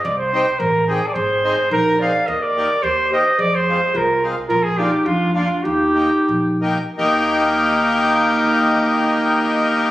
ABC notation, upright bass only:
X:1
M:2/4
L:1/8
Q:1/4=107
K:Eb
V:1 name="Upright bass" clef=bass
C,,2 =A,,,2 | A,,,2 B,,,2 | E,,2 E,,2 | F,,2 C,,2 |
B,,,2 F,,2 | E,,2 B,,,2 | E,,4- | E,,4 |]